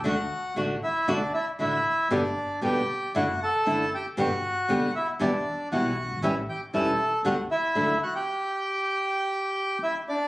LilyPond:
<<
  \new Staff \with { instrumentName = "Bandoneon" } { \time 4/4 \key g \major \tempo 4 = 117 <fis' fis''>4 r8 <e' e''>8 <d' d''>8 <e' e''>8 <e' e''>4 | <d' d''>4 <g' g''>4 <fis' fis''>8 <a' a''>4 <g' g''>8 | <fis' fis''>4. <e' e''>8 <d' d''>4 <fis' fis''>4 | <e' e''>8 <g' g''>8 <a' a''>4 <fis' fis''>8 <e' e''>4 <fis' fis''>16 <g' g''>16~ |
<g' g''>2. <e' e''>8 <d' d''>8 | }
  \new Staff \with { instrumentName = "Nylon-string guitar" } { \time 4/4 \key g \major <d a d' fis'>8 r8 <d a d' fis'>8 r8 <d a d' fis'>8 r8 <d a d' fis'>8 r8 | <b, d g b g'>8 r8 <b, d g b g'>8 r8 <d a d' e'>8 r8 <d a d' e'>8 r8 | <b, d g b g'>8 r8 <b, d g b g'>8 r8 <b, e g b e'>8 r8 <b, e g b e'>8 r8 | <e g cis' e'>8 r8 <e g cis' e'>8 r8 <d g b g'>8 r8 <d fis a d' e'>8 r8 |
r1 | }
  \new Staff \with { instrumentName = "Upright bass" } { \clef bass \time 4/4 \key g \major d,16. r8 r32 a,,16. r8 r32 d,16. r8 r32 a,,16. r8 r32 | g,,16. r8 r32 d,16. r8 r32 fis,,16. r8 r32 fis,,16. r8 r32 | g,,16. r8 r32 d,16. r8 r32 e,16. r8 r32 b,,16. r16 fis,,32 g,,32 aes,,32 | a,,16. r8 r32 e,,16. r8 r32 d,16. r8 r32 d,16. r8 r32 |
r1 | }
>>